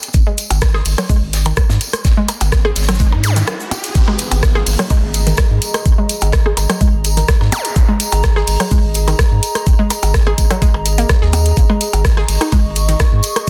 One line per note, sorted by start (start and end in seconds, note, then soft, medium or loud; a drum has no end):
0.02 closed hi-hat medium
0.02 tambourine soft
0.13 0.24 G#1 loud
0.13 kick loud
0.13 closed hi-hat soft
0.13 tambourine soft
0.13 riser medium
0.13 shaker medium
0.27 0.29 G#3 medium
0.38 closed hi-hat medium
0.38 tambourine medium
0.38 shaker medium
0.50 0.81 G#1 loud
0.50 closed hi-hat medium
0.50 closed hi-hat soft
0.50 tambourine medium
0.50 percussion blips medium
0.61 kick loud
0.61 cross-stick medium
0.61 snare loud
0.61 closed hi-hat soft
0.61 percussion blips medium
0.61 shaker medium
0.74 0.77 G#4 loud
0.74 cross-stick medium
0.74 snare soft
0.85 0.95 G#1 medium
0.85 closed hi-hat medium
0.85 open hi-hat medium
0.85 tambourine medium
0.98 1.01 F#3 medium
0.98 cross-stick medium
0.98 closed hi-hat medium
0.98 tambourine soft
0.98 percussion blips medium
1.09 1.15 G#3 medium
1.09 kick loud
1.09 closed hi-hat soft
1.09 tambourine soft
1.09 percussion blips medium
1.09 shaker medium
1.22 1.52 G#1 medium
1.33 snare loud
1.33 closed hi-hat medium
1.33 tambourine medium
1.33 shaker medium
1.45 1.48 D#3 medium
1.45 closed hi-hat medium
1.45 tambourine soft
1.45 percussion blips medium
1.57 kick loud
1.57 cross-stick medium
1.57 closed hi-hat soft
1.57 tambourine soft
1.57 shaker medium
1.70 1.78 G#2 loud
1.70 snare loud
1.70 percussion blips medium
1.70 shaker medium
1.81 closed hi-hat medium
1.81 tambourine medium
1.93 cross-stick medium
1.93 closed hi-hat medium
1.93 tambourine medium
1.93 shaker medium
2.04 2.14 G#1 loud
2.04 kick loud
2.04 snare loud
2.04 closed hi-hat soft
2.04 tambourine soft
2.04 shaker medium
2.17 2.19 G#3 medium
2.28 closed hi-hat medium
2.28 tambourine loud
2.28 percussion blips medium
2.28 shaker medium
2.41 2.72 G#1 loud
2.41 closed hi-hat soft
2.41 closed hi-hat medium
2.41 tambourine soft
2.41 percussion blips medium
2.52 kick loud
2.52 cross-stick medium
2.52 snare loud
2.52 closed hi-hat soft
2.52 shaker medium
2.65 2.68 G#4 loud
2.65 cross-stick medium
2.65 percussion blips medium
2.76 3.14 G#1 medium
2.76 snare medium
2.76 closed hi-hat loud
2.76 tambourine medium
2.76 shaker medium
2.83 snare medium
2.83 shaker medium
2.88 2.92 F#3 medium
2.88 cross-stick medium
2.88 snare medium
2.88 closed hi-hat medium
2.88 tambourine medium
2.88 percussion blips medium
2.88 shaker medium
2.94 snare medium
2.94 shaker medium
2.99 3.05 G#3 medium
2.99 kick loud
2.99 closed hi-hat soft
2.99 tambourine soft
2.99 shaker medium
3.12 3.43 G#2 medium
3.12 percussion blips medium
3.23 closed hi-hat medium
3.23 tambourine medium
3.23 zap medium
3.23 shaker medium
3.36 3.38 D#3 medium
3.36 closed hi-hat medium
3.36 tambourine soft
3.36 shaker medium
3.47 cross-stick loud
3.47 closed hi-hat soft
3.47 tambourine soft
3.47 percussion blips medium
3.60 shaker medium
3.71 closed hi-hat medium
3.71 tambourine medium
3.71 percussion blips medium
3.84 closed hi-hat medium
3.84 tambourine medium
3.84 shaker medium
3.95 4.05 G#1 loud
3.95 13.50 G#4 medium
3.95 kick loud
3.95 closed hi-hat soft
3.95 tambourine soft
3.95 downlifter medium
3.95 shaker medium
4.08 4.10 G#3 medium
4.08 percussion blips medium
4.18 closed hi-hat medium
4.18 tambourine medium
4.18 shaker medium
4.31 4.62 G#1 medium
4.31 closed hi-hat soft
4.31 closed hi-hat medium
4.31 tambourine medium
4.31 percussion blips medium
4.43 kick loud
4.43 cross-stick loud
4.43 snare loud
4.43 closed hi-hat soft
4.43 shaker medium
4.55 4.58 G#4 loud
4.55 12.19 A#5 medium
4.55 cross-stick medium
4.55 snare soft
4.65 4.76 G#1 medium
4.65 13.50 D#5 medium
4.65 closed hi-hat medium
4.65 open hi-hat medium
4.65 tambourine loud
4.79 4.82 F#3 medium
4.79 cross-stick medium
4.79 closed hi-hat medium
4.79 percussion blips medium
4.90 4.96 G#3 medium
4.90 kick loud
4.90 closed hi-hat soft
4.90 tambourine soft
4.90 percussion blips medium
4.90 shaker medium
5.03 5.33 G#1 medium
5.14 closed hi-hat medium
5.14 tambourine medium
5.14 shaker medium
5.27 5.29 D#3 medium
5.27 closed hi-hat medium
5.27 tambourine medium
5.37 kick loud
5.37 cross-stick loud
5.37 snare loud
5.37 closed hi-hat soft
5.37 tambourine soft
5.37 shaker loud
5.50 5.59 G#2 medium
5.62 closed hi-hat loud
5.62 tambourine medium
5.62 shaker medium
5.74 cross-stick medium
5.74 closed hi-hat medium
5.74 tambourine medium
5.74 percussion blips medium
5.86 5.95 G#1 loud
5.86 kick loud
5.86 closed hi-hat soft
5.86 tambourine soft
5.86 shaker medium
5.98 6.00 G#3 medium
6.09 closed hi-hat loud
6.09 tambourine medium
6.09 shaker medium
6.21 6.52 G#1 medium
6.21 closed hi-hat soft
6.21 closed hi-hat medium
6.21 tambourine medium
6.21 percussion blips medium
6.32 kick loud
6.32 cross-stick loud
6.32 snare loud
6.32 closed hi-hat soft
6.32 tambourine soft
6.32 shaker medium
6.46 6.49 G#4 medium
6.46 cross-stick medium
6.46 percussion blips medium
6.57 6.66 G#1 medium
6.57 closed hi-hat loud
6.57 tambourine loud
6.57 percussion blips medium
6.57 shaker medium
6.70 6.73 F#3 medium
6.70 cross-stick medium
6.70 closed hi-hat medium
6.70 tambourine medium
6.70 percussion blips medium
6.81 6.86 G#3 medium
6.81 kick loud
6.81 closed hi-hat soft
6.81 tambourine soft
6.81 shaker medium
6.93 7.24 G#1 loud
7.04 closed hi-hat medium
7.04 tambourine loud
7.04 shaker medium
7.17 7.19 D#3 medium
7.17 closed hi-hat medium
7.17 closed hi-hat soft
7.17 tambourine medium
7.28 kick loud
7.28 cross-stick loud
7.28 snare loud
7.28 closed hi-hat soft
7.28 shaker medium
7.41 7.49 G#2 medium
7.41 snare medium
7.41 percussion blips medium
7.52 closed hi-hat loud
7.52 tambourine medium
7.52 zap medium
7.52 percussion blips medium
7.52 shaker medium
7.65 closed hi-hat medium
7.65 tambourine medium
7.76 7.85 G#1 loud
7.76 kick loud
7.76 closed hi-hat soft
7.76 tambourine soft
7.76 shaker medium
7.89 7.91 G#3 medium
8.00 closed hi-hat loud
8.00 tambourine loud
8.00 shaker medium
8.12 8.43 G#1 medium
8.12 closed hi-hat medium
8.12 closed hi-hat soft
8.12 tambourine medium
8.12 percussion blips medium
8.23 kick loud
8.23 cross-stick loud
8.23 snare loud
8.23 closed hi-hat soft
8.23 percussion blips medium
8.23 shaker medium
8.36 8.39 G#4 loud
8.36 cross-stick medium
8.36 snare soft
8.47 8.57 G#1 medium
8.47 closed hi-hat loud
8.47 open hi-hat medium
8.47 tambourine medium
8.60 8.63 F#3 medium
8.60 cross-stick medium
8.60 closed hi-hat medium
8.60 tambourine medium
8.60 percussion blips medium
8.71 8.77 G#3 medium
8.71 kick loud
8.71 closed hi-hat soft
8.71 tambourine soft
8.71 percussion blips medium
8.71 shaker medium
8.84 9.14 G#1 medium
8.94 closed hi-hat medium
8.94 tambourine loud
8.94 shaker medium
9.08 9.10 D#3 medium
9.08 closed hi-hat medium
9.08 tambourine soft
9.08 percussion blips medium
9.19 kick loud
9.19 cross-stick loud
9.19 snare loud
9.19 closed hi-hat soft
9.19 tambourine soft
9.19 shaker medium
9.31 9.40 G#2 medium
9.43 closed hi-hat loud
9.43 tambourine medium
9.43 shaker medium
9.55 cross-stick medium
9.55 closed hi-hat medium
9.55 tambourine medium
9.66 9.76 G#1 loud
9.66 kick loud
9.66 closed hi-hat soft
9.66 tambourine soft
9.66 shaker medium
9.79 9.81 G#3 medium
9.90 closed hi-hat medium
9.90 tambourine loud
9.90 percussion blips medium
9.90 shaker medium
10.02 10.33 G#1 medium
10.02 closed hi-hat medium
10.02 closed hi-hat soft
10.02 tambourine medium
10.02 percussion blips medium
10.14 kick loud
10.14 cross-stick medium
10.14 snare loud
10.14 closed hi-hat soft
10.14 shaker medium
10.27 10.30 G#4 loud
10.27 cross-stick medium
10.27 percussion blips medium
10.38 10.47 G#1 medium
10.38 kick medium
10.38 closed hi-hat loud
10.38 tambourine medium
10.38 shaker medium
10.51 10.54 F#3 medium
10.51 cross-stick medium
10.51 closed hi-hat medium
10.51 tambourine medium
10.51 percussion blips medium
10.62 10.67 G#3 medium
10.62 kick loud
10.62 closed hi-hat soft
10.62 tambourine soft
10.62 shaker medium
10.74 11.05 G#1 medium
10.74 percussion blips medium
10.86 closed hi-hat medium
10.86 tambourine loud
10.86 shaker medium
10.98 11.01 A#3 medium
10.98 closed hi-hat medium
10.98 closed hi-hat soft
10.98 tambourine medium
11.09 kick loud
11.09 cross-stick medium
11.09 snare loud
11.09 closed hi-hat soft
11.09 tambourine soft
11.09 shaker medium
11.22 11.52 D#2 medium
11.22 11.24 G#4 medium
11.22 snare medium
11.33 closed hi-hat loud
11.33 tambourine medium
11.33 percussion blips medium
11.33 shaker medium
11.46 closed hi-hat medium
11.46 tambourine medium
11.56 11.66 G#1 loud
11.56 kick loud
11.56 closed hi-hat soft
11.56 tambourine soft
11.56 shaker medium
11.70 11.72 G#3 medium
11.70 percussion blips medium
11.81 closed hi-hat medium
11.81 tambourine loud
11.81 shaker medium
11.93 12.24 G#1 medium
11.93 closed hi-hat soft
11.93 closed hi-hat medium
11.93 tambourine medium
11.93 percussion blips medium
12.04 kick loud
12.04 cross-stick medium
12.04 snare loud
12.04 closed hi-hat soft
12.04 tambourine soft
12.04 shaker medium
12.17 12.20 G#4 loud
12.17 13.50 C#6 medium
12.17 cross-stick medium
12.17 snare soft
12.28 12.38 G#1 medium
12.28 closed hi-hat loud
12.28 open hi-hat medium
12.28 tambourine medium
12.41 12.44 D#4 medium
12.41 cross-stick medium
12.41 closed hi-hat medium
12.41 tambourine soft
12.41 percussion blips medium
12.52 12.58 G#3 medium
12.52 kick loud
12.52 closed hi-hat soft
12.52 tambourine soft
12.52 percussion blips medium
12.52 shaker medium
12.65 12.95 G#1 medium
12.76 closed hi-hat medium
12.76 tambourine medium
12.76 shaker medium
12.88 12.91 D#3 medium
12.88 closed hi-hat medium
12.88 tambourine medium
12.99 kick loud
12.99 cross-stick medium
12.99 snare loud
12.99 closed hi-hat soft
12.99 tambourine soft
12.99 shaker medium
13.12 13.21 G#2 medium
13.23 closed hi-hat medium
13.23 tambourine medium
13.23 shaker medium
13.36 cross-stick medium
13.36 closed hi-hat medium
13.36 tambourine medium
13.36 percussion blips medium